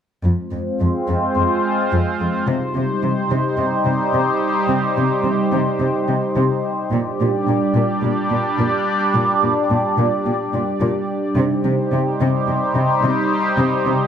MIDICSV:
0, 0, Header, 1, 3, 480
1, 0, Start_track
1, 0, Key_signature, -3, "minor"
1, 0, Tempo, 555556
1, 220, Time_signature, 4, 2, 24, 8
1, 12156, End_track
2, 0, Start_track
2, 0, Title_t, "Analog synth pad"
2, 0, Program_c, 0, 89
2, 218, Note_on_c, 0, 65, 51
2, 219, Note_on_c, 0, 60, 50
2, 221, Note_on_c, 0, 56, 51
2, 222, Note_on_c, 0, 72, 50
2, 2105, Note_off_c, 0, 60, 0
2, 2105, Note_off_c, 0, 65, 0
2, 2106, Note_off_c, 0, 56, 0
2, 2107, Note_off_c, 0, 72, 0
2, 2157, Note_on_c, 0, 55, 52
2, 2160, Note_on_c, 0, 67, 54
2, 2161, Note_on_c, 0, 63, 51
2, 2163, Note_on_c, 0, 72, 51
2, 5954, Note_off_c, 0, 55, 0
2, 5956, Note_off_c, 0, 63, 0
2, 5956, Note_off_c, 0, 67, 0
2, 5957, Note_off_c, 0, 72, 0
2, 5986, Note_on_c, 0, 67, 51
2, 5988, Note_on_c, 0, 55, 54
2, 5990, Note_on_c, 0, 62, 55
2, 5994, Note_on_c, 0, 74, 54
2, 9789, Note_off_c, 0, 67, 0
2, 9790, Note_off_c, 0, 55, 0
2, 9818, Note_on_c, 0, 63, 57
2, 9821, Note_on_c, 0, 55, 59
2, 9821, Note_on_c, 0, 72, 55
2, 9822, Note_on_c, 0, 67, 58
2, 9825, Note_off_c, 0, 62, 0
2, 9827, Note_off_c, 0, 74, 0
2, 12156, Note_off_c, 0, 55, 0
2, 12156, Note_off_c, 0, 63, 0
2, 12156, Note_off_c, 0, 67, 0
2, 12156, Note_off_c, 0, 72, 0
2, 12156, End_track
3, 0, Start_track
3, 0, Title_t, "Cello section"
3, 0, Program_c, 1, 48
3, 215, Note_on_c, 1, 41, 36
3, 284, Note_off_c, 1, 41, 0
3, 454, Note_on_c, 1, 41, 30
3, 524, Note_off_c, 1, 41, 0
3, 698, Note_on_c, 1, 41, 31
3, 767, Note_off_c, 1, 41, 0
3, 936, Note_on_c, 1, 41, 45
3, 1006, Note_off_c, 1, 41, 0
3, 1178, Note_on_c, 1, 41, 33
3, 1247, Note_off_c, 1, 41, 0
3, 1659, Note_on_c, 1, 41, 45
3, 1729, Note_off_c, 1, 41, 0
3, 1899, Note_on_c, 1, 41, 30
3, 1968, Note_off_c, 1, 41, 0
3, 2136, Note_on_c, 1, 48, 40
3, 2205, Note_off_c, 1, 48, 0
3, 2387, Note_on_c, 1, 48, 28
3, 2456, Note_off_c, 1, 48, 0
3, 2620, Note_on_c, 1, 48, 29
3, 2690, Note_off_c, 1, 48, 0
3, 2854, Note_on_c, 1, 48, 36
3, 2923, Note_off_c, 1, 48, 0
3, 3091, Note_on_c, 1, 48, 28
3, 3160, Note_off_c, 1, 48, 0
3, 3330, Note_on_c, 1, 48, 28
3, 3399, Note_off_c, 1, 48, 0
3, 3571, Note_on_c, 1, 48, 40
3, 3640, Note_off_c, 1, 48, 0
3, 4048, Note_on_c, 1, 48, 38
3, 4117, Note_off_c, 1, 48, 0
3, 4290, Note_on_c, 1, 48, 30
3, 4359, Note_off_c, 1, 48, 0
3, 4526, Note_on_c, 1, 48, 29
3, 4596, Note_off_c, 1, 48, 0
3, 4774, Note_on_c, 1, 48, 39
3, 4843, Note_off_c, 1, 48, 0
3, 5013, Note_on_c, 1, 48, 27
3, 5082, Note_off_c, 1, 48, 0
3, 5255, Note_on_c, 1, 48, 26
3, 5324, Note_off_c, 1, 48, 0
3, 5493, Note_on_c, 1, 48, 42
3, 5562, Note_off_c, 1, 48, 0
3, 5979, Note_on_c, 1, 46, 41
3, 6049, Note_off_c, 1, 46, 0
3, 6228, Note_on_c, 1, 46, 31
3, 6297, Note_off_c, 1, 46, 0
3, 6461, Note_on_c, 1, 46, 29
3, 6530, Note_off_c, 1, 46, 0
3, 6700, Note_on_c, 1, 46, 39
3, 6769, Note_off_c, 1, 46, 0
3, 6941, Note_on_c, 1, 46, 30
3, 7010, Note_off_c, 1, 46, 0
3, 7181, Note_on_c, 1, 46, 32
3, 7250, Note_off_c, 1, 46, 0
3, 7419, Note_on_c, 1, 46, 44
3, 7489, Note_off_c, 1, 46, 0
3, 7902, Note_on_c, 1, 46, 46
3, 7971, Note_off_c, 1, 46, 0
3, 8146, Note_on_c, 1, 46, 33
3, 8215, Note_off_c, 1, 46, 0
3, 8387, Note_on_c, 1, 46, 32
3, 8456, Note_off_c, 1, 46, 0
3, 8620, Note_on_c, 1, 46, 45
3, 8689, Note_off_c, 1, 46, 0
3, 8864, Note_on_c, 1, 46, 32
3, 8933, Note_off_c, 1, 46, 0
3, 9103, Note_on_c, 1, 46, 33
3, 9172, Note_off_c, 1, 46, 0
3, 9339, Note_on_c, 1, 46, 48
3, 9408, Note_off_c, 1, 46, 0
3, 9825, Note_on_c, 1, 48, 52
3, 9894, Note_off_c, 1, 48, 0
3, 10062, Note_on_c, 1, 48, 37
3, 10131, Note_off_c, 1, 48, 0
3, 10307, Note_on_c, 1, 48, 38
3, 10376, Note_off_c, 1, 48, 0
3, 10547, Note_on_c, 1, 48, 54
3, 10616, Note_off_c, 1, 48, 0
3, 10784, Note_on_c, 1, 48, 36
3, 10853, Note_off_c, 1, 48, 0
3, 11016, Note_on_c, 1, 48, 39
3, 11085, Note_off_c, 1, 48, 0
3, 11257, Note_on_c, 1, 48, 53
3, 11326, Note_off_c, 1, 48, 0
3, 11735, Note_on_c, 1, 48, 57
3, 11804, Note_off_c, 1, 48, 0
3, 11976, Note_on_c, 1, 48, 43
3, 12046, Note_off_c, 1, 48, 0
3, 12156, End_track
0, 0, End_of_file